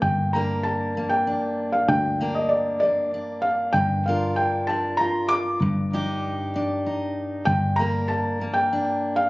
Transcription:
<<
  \new Staff \with { instrumentName = "Felt piano" } { \time 3/4 \key g \minor \tempo 4 = 97 g''8 bes''8 a''8. g''4 f''16 | g''8. ees''16 d''8 d''4 f''8 | g''8 f''8 g''8 a''8 bes''8 d'''8~ | d'''4. r4. |
g''8 bes''8 a''8. g''4 f''16 | }
  \new Staff \with { instrumentName = "Steel-string acoustic guitar" } { \time 3/4 \key g \minor << { bes8 <bes d' bes'>4 bes8 d'4~ | d'8 <bes d' bes'>4 bes8 d'4~ | d'8 <d' f' bes'>4 d'8 f'4 | r8 <d' ees' g'>4 d'8 ees'4 |
r8 <bes d' bes'>4 bes8 d'4 | } \\ { g,2. | g,2. | g,2. | g,2. |
g,2. | } >> }
  \new Staff \with { instrumentName = "Picked electric bass" } { \clef bass \time 3/4 \key g \minor g,,2 r4 | d,2 r4 | g,,2 r4 | g,,2 r4 |
g,,2 r4 | }
>>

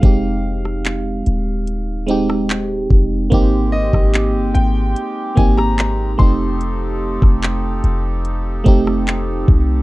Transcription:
<<
  \new Staff \with { instrumentName = "Grand piano" } { \time 4/4 \key f \dorian \tempo 4 = 73 f''2~ f''8 r4. | r8 ees''4 g''4 aes''16 bes''8. c'''8~ | c'''2~ c'''8 r4. | }
  \new Staff \with { instrumentName = "FM electric piano" } { \time 4/4 \key f \dorian <aes c' ees' g'>4. r4 <aes c' ees' g'>4 r8 | <bes c' ees' g'>4. r4 <bes c' ees' g'>4 <a c' ees' g'>8~ | <a c' ees' g'>4 r4. <a c' ees' g'>4 r8 | }
  \new Staff \with { instrumentName = "Accordion" } { \time 4/4 \key f \dorian r1 | <aes c' g'>2.~ <aes c' g'>8 <f c' ees' a'>8~ | <f c' ees' a'>1 | }
  \new Staff \with { instrumentName = "808-style bass" } { \clef bass \time 4/4 \key f \dorian f,,4. ees,,2 f,,8 | aes,,8. aes,,8 g,,16 aes,,8 r8 aes,,4 f,,8~ | f,,8. f,,8. f,,4 f,,4 c,8 | }
  \new DrumStaff \with { instrumentName = "Drums" } \drummode { \time 4/4 <hh bd>8. ss16 <hc hh>8 hh8 hh8 hh16 ss16 <hc hh>8 bd8 | <hh bd>8. <bd ss>16 <hc hh>8 hh8 hh8 <hh bd>16 ss16 <hc hh>8 bd8 | hh8. <bd ss>16 <hc hh>8 hh8 hh8 <hh bd>16 ss16 <hc hh>8 bd8 | }
>>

